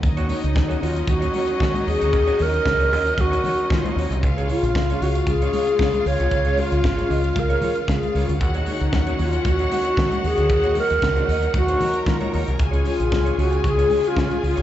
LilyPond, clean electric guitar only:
\new Staff \with { instrumentName = "Clean electric guitar" } { \time 4/4 \key ees \minor \tempo 4 = 115 r16 <bes des' ges' des''>16 <bes des' ges' des''>16 r8 <bes des' ges' des''>16 <bes des' ges' des''>16 r8 <bes des' ges' des''>16 <bes des' ges' des''>16 r16 <bes des' ges' des''>16 r8 <bes des' ges' des''>16 | r16 <bes des' ges' des''>16 <bes des' ges' des''>16 r8 <bes des' ges' des''>16 <bes des' ges' ees''>16 r8 <bes des' ges' des''>16 <bes des' ges' des''>16 r8 <bes des' ges' des''>16 <bes des' ges' des''>16 r16 | r16 <des' f' aes' des''>16 <des' f' aes' des''>16 r8 <des' f' aes' des''>16 <des' f' aes' des''>16 r8 <des' f' aes' des''>16 <des' f' aes' des''>16 r16 <des' f' aes' des''>16 r8 <des' f' aes' des''>16 | r16 <des' f' aes' des''>16 <des' f' aes' des''>16 r8 <des' f' aes' des''>16 <des' f' aes' ees''>16 r8 <des' f' aes' des''>16 <des' f' aes' des''>16 r8. <des' f' aes' des''>16 r16 |
r16 <bes ees' ges' des''>16 <bes ees' ges' des''>16 r8 <bes ees' ges' des''>16 <bes ees' ges' des''>16 r8 <bes ees' ges' des''>16 <bes ees' ges' des''>16 r16 <bes ees' ges' des''>16 r8 <bes ees' ges' des''>16 | r16 <bes ees' ges' des''>16 <bes ees' ges' des''>16 r8 <bes ees' ges' des''>16 <bes ees' ges' ees''>16 r8 <bes ees' ges' des''>16 <bes ees' ges' des''>16 r8 <bes ees' ges' des''>16 <bes ees' ges' des''>16 r16 | r16 <des' f' aes' des''>16 <des' f' aes' des''>16 r8 <des' f' aes' des''>16 <des' f' aes' des''>16 r8 <des' f' aes' des''>16 <des' f' aes' des''>16 r16 <des' f' aes' des''>16 r8 <des' f' aes' des''>16 | }